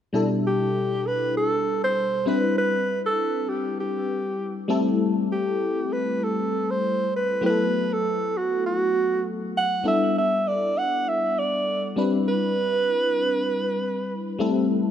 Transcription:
0.13 2.22 B2 medium
0.13 2.22 G3 medium
0.13 2.22 D4 medium
0.13 2.23 E4 medium
0.13 2.23 A4 medium
0.47 1.08 G4 medium
1.07 1.36 B4 medium
1.37 1.79 A4 medium
1.84 2.29 C5 medium
2.26 4.65 G3 medium
2.26 4.65 C4 medium
2.26 4.65 D4 medium
2.26 4.65 E4 medium
2.26 2.57 B4 medium
2.26 4.66 B4 medium
2.58 3.01 B4 loud
3.06 3.51 A4 medium
3.49 3.79 G4 medium
3.80 4.66 G4 medium
4.68 7.07 G3 medium
4.68 7.08 A3 medium
4.68 7.08 C4 medium
4.68 7.08 E4 medium
4.68 7.08 A4 medium
5.32 5.94 G4 medium
5.93 6.25 B4 medium
6.24 6.72 A4 medium
6.70 7.13 C5 medium
7.16 7.42 B4 medium
7.41 9.80 F#3 medium
7.41 9.80 A3 medium
7.41 9.81 B3 soft
7.41 9.81 E4 soft
7.41 7.50 G4 soft
7.46 7.95 B4 medium
7.50 9.85 A4 medium
7.93 8.38 A4 medium
8.37 8.65 F#4 medium
8.66 9.25 F#4 medium
9.57 9.84 F#5 loud
9.83 11.92 G3 medium
9.83 11.93 B3 medium
9.83 11.93 D4 soft
9.83 11.93 E4 soft
9.83 11.94 A4 medium
9.88 10.15 E5 medium
10.18 10.49 E5 medium
10.48 10.79 D5 medium
10.78 11.10 F#5 medium
11.08 11.40 E5 medium
11.39 11.98 D5 medium
11.96 14.35 G3 medium
11.96 14.35 C4 medium
11.96 14.36 D4 medium
11.96 14.36 E4 medium
11.96 14.36 B4 medium
12.28 14.36 B4 loud
14.39 14.91 G3 medium
14.39 14.91 A3 medium
14.39 14.91 C4 medium
14.39 14.91 E4 medium
14.39 14.91 A4 medium

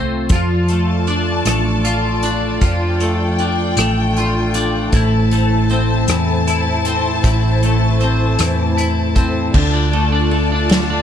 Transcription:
0.00 0.26 C2 medium
0.00 0.32 F3 medium
0.00 0.70 A3 medium
0.00 0.39 C4 soft
0.00 0.32 F4 medium
0.29 1.42 F2 medium
0.29 2.61 F3 medium
0.29 4.88 F4 medium
0.29 1.83 F4 medium
0.29 9.50 A4 medium
0.29 4.88 D5 medium
0.29 2.59 A5 medium
0.29 kick medium
0.29 closed hi-hat medium
0.68 1.45 A3 soft
0.68 closed hi-hat soft
1.07 2.22 D4 medium
1.07 closed hi-hat soft
1.45 2.57 A1 medium
1.45 3.01 A3 medium
1.45 cross-stick medium
1.45 closed hi-hat medium
1.85 2.61 F4 medium
1.85 closed hi-hat medium
2.23 3.39 D4 soft
2.23 closed hi-hat medium
2.61 3.73 F2 medium
2.61 4.93 F3 medium
2.61 4.16 F4 medium
2.61 4.91 G5 medium
2.61 kick loud
2.61 closed hi-hat medium
3.00 3.78 A3 medium
3.00 closed hi-hat soft
3.38 4.54 D4 medium
3.38 closed hi-hat soft
3.77 4.88 A1 medium
3.77 5.32 A3 medium
3.77 cross-stick medium
3.77 closed hi-hat medium
4.17 4.94 F4 medium
4.17 cross-stick soft
4.17 closed hi-hat medium
4.54 5.01 D4 medium
4.54 closed hi-hat medium
4.92 6.04 A1 loud
4.92 7.23 A2 medium
4.92 9.50 E4 medium
4.92 6.46 E4 medium
4.92 9.50 C5 medium
4.92 9.50 A5 medium
4.92 kick loud
4.92 closed hi-hat medium
5.31 7.63 A3 medium
5.31 closed hi-hat soft
5.70 6.85 C4 medium
5.70 closed hi-hat soft
6.08 7.20 E2 medium
6.08 8.38 E3 medium
6.08 cross-stick loud
6.08 closed hi-hat medium
6.47 7.24 E4 medium
6.47 closed hi-hat medium
6.85 8.00 C4 medium
6.85 closed hi-hat medium
7.24 8.35 A1 loud
7.24 9.55 A2 medium
7.24 8.76 E4 medium
7.24 kick loud
7.24 closed hi-hat medium
7.63 9.93 A3 medium
7.63 closed hi-hat soft
8.01 9.14 C4 medium
8.01 closed hi-hat soft
8.39 9.51 E2 medium
8.39 9.55 E3 medium
8.39 cross-stick loud
8.39 closed hi-hat medium
8.78 9.62 E4 medium
8.78 closed hi-hat medium
9.16 9.62 C4 medium
9.16 kick medium
9.16 closed hi-hat soft
9.53 11.02 D2 loud
9.53 10.70 D3 medium
9.53 11.02 F4 medium
9.53 11.02 A4 medium
9.53 11.02 D5 medium
9.53 11.02 A5 medium
9.53 kick loud
9.53 crash medium
9.74 10.11 D4 medium
9.93 10.31 A3 medium
9.93 ride soft
10.12 10.51 D4 medium
10.31 11.02 A3 medium
10.31 ride soft
10.52 10.89 D4 medium
10.69 11.02 D3 medium
10.69 snare loud
10.69 ride medium
10.90 11.02 D4 medium

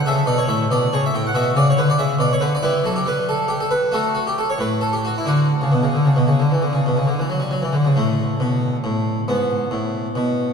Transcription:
0.06 0.22 C#3 medium
0.06 1.30 A4 soft
0.06 0.28 E5 medium
0.26 0.42 B2 medium
0.26 0.37 D5 medium
0.38 0.48 C#5 medium
0.48 0.63 A2 medium
0.48 0.66 E5 medium
0.71 0.85 B2 medium
0.71 0.92 D5 medium
0.93 1.07 C#3 medium
0.93 1.03 C#5 medium
1.06 1.14 E5 medium
1.14 1.28 A2 medium
1.14 1.24 G5 medium
1.27 1.35 F#5 medium
1.34 1.49 B2 medium
1.34 2.58 F#4 soft
1.34 1.56 E5 medium
1.55 1.71 C#3 medium
1.55 1.66 D5 medium
1.70 1.78 C#5 medium
1.77 1.92 D3 medium
1.77 1.88 B4 medium
1.90 1.99 D5 medium
1.98 2.13 C#3 medium
1.98 2.16 E5 medium
2.19 2.34 B2 medium
2.19 2.30 D5 medium
2.33 2.42 C#5 medium
2.40 2.55 D3 medium
2.40 2.51 B4 medium
2.55 2.63 D5 medium
2.62 2.78 G3 medium
2.62 3.88 E4 soft
2.62 2.84 B4 medium
2.84 2.99 F#3 medium
2.84 2.95 A4 medium
2.96 3.06 G4 medium
3.06 3.68 G3 medium
3.06 3.25 B4 medium
3.29 3.49 A4 medium
3.48 3.59 G4 medium
3.60 3.71 A4 medium
3.71 3.92 B4 medium
3.92 4.40 A3 soft
3.92 4.13 F#4 soft
3.92 4.11 A4 medium
4.15 4.25 F#4 medium
4.27 4.37 G4 medium
4.38 4.48 A4 medium
4.50 4.59 C#5 medium
4.58 5.07 A2 soft
4.58 4.81 B4 medium
4.81 4.92 A4 medium
4.93 5.04 G4 medium
5.05 5.15 F#4 medium
5.18 5.28 E4 medium
5.25 5.51 D3 soft
5.25 7.93 D4 soft
5.25 6.99 F#4 medium
5.61 5.71 C#3 soft
5.72 5.82 B2 soft
5.83 5.94 C#3 soft
5.95 6.05 D3 soft
6.05 6.16 C#3 soft
6.16 6.27 B2 soft
6.27 6.38 C#3 soft
6.39 6.50 D3 soft
6.52 6.62 E3 soft
6.62 6.73 D3 soft
6.73 6.84 C#3 soft
6.86 6.96 B2 soft
6.97 7.07 C#3 soft
7.07 7.18 D3 soft
7.19 7.29 E3 soft
7.30 7.40 F#3 soft
7.40 7.51 G3 soft
7.51 7.62 F#3 soft
7.62 7.73 E3 soft
7.73 7.84 D3 soft
7.85 7.96 C#3 soft
7.96 8.31 A2 medium
7.96 9.24 A3 soft
8.40 8.75 B2 medium
8.84 9.19 A2 medium
9.28 9.63 G#2 medium
9.28 10.53 B3 soft
9.71 10.06 A2 medium
10.15 10.49 B2 medium

